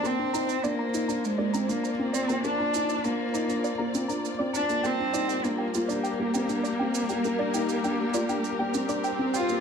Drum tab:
SH |x-xxx-xxx-xxx-xx|x-xxx-xxx-xxx-xx|x-xxx-xxx-xxx-xx|x-xxx-xxx-xxx-xx|